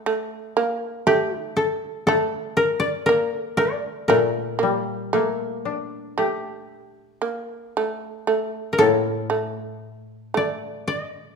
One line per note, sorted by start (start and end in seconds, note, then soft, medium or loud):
0.06 0.56 A3 medium
0.57 1.06 A#3 medium
1.07 2.07 A3 medium
1.07 1.39 G4 medium
1.39 3.11 D#4 medium
1.57 2.06 A4 medium
2.07 3.09 A3 medium
2.07 2.63 A4 medium
2.57 3.06 A#4 medium
2.80 3.57 D5 medium
3.06 3.58 A#3 medium
3.06 3.34 A#4 medium
3.34 4.08 A4 medium
3.57 4.08 A3 medium
3.57 5.17 D5 medium
4.08 7.22 A#2 medium
4.08 4.58 A3 medium
4.08 7.71 A#4 medium
4.59 6.70 G3 soft
4.59 5.12 A#3 medium
5.13 6.16 A3 medium
5.13 7.23 A#3 soft
5.65 7.76 D4 soft
6.18 7.21 A3 medium
6.18 8.29 G4 soft
7.22 7.75 A#3 medium
7.77 8.26 A3 medium
8.27 8.79 A3 medium
8.73 8.84 A#4 medium
8.78 11.36 A2 medium
8.78 9.29 A#3 medium
8.78 10.69 A4 medium
9.30 10.33 A3 medium
10.34 11.36 A3 medium
10.34 10.88 D5 medium
10.88 11.00 D5 medium
11.00 11.36 D#5 medium